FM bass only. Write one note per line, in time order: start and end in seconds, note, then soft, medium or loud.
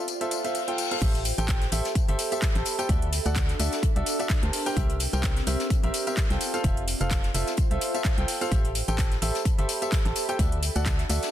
1.02 1.32 A1 loud
1.38 1.67 A1 medium
1.72 1.81 A1 medium
2.08 2.16 G1 medium
2.55 2.63 A1 loud
2.89 3.20 D2 loud
3.26 3.55 D2 medium
3.59 3.69 D2 medium
3.96 4.03 C2 medium
4.43 4.50 D2 loud
4.77 5.07 C2 loud
5.13 5.42 C2 medium
5.47 5.56 C2 medium
5.83 5.91 A#1 medium
6.30 6.38 C2 loud
6.64 6.95 F1 loud
7.01 7.30 F1 medium
7.34 7.44 F1 medium
7.71 7.78 C2 medium
8.18 8.25 C2 medium
8.52 8.82 A1 loud
8.88 9.17 A1 medium
9.22 9.31 A1 medium
9.58 9.66 G1 medium
10.05 10.13 A1 loud
10.39 10.70 D2 loud
10.76 11.05 D2 medium
11.09 11.19 D2 medium